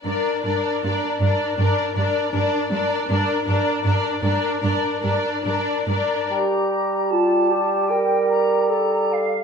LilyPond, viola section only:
\new Staff \with { instrumentName = "Viola section" } { \time 4/4 \key g \minor \tempo 4 = 77 d'8 d'8 d'8 d'8 d'8 d'8 d'8 d'8 | d'8 d'8 d'8 d'8 d'8 d'8 d'8 d'8 | r1 | }